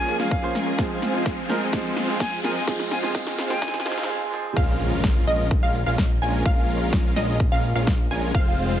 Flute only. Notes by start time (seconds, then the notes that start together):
Already playing: G#5
0.19 F5
2.20 G#5
2.44 G#5
2.56 G#5
2.91 G#5
3.03 G#5
3.50 G#5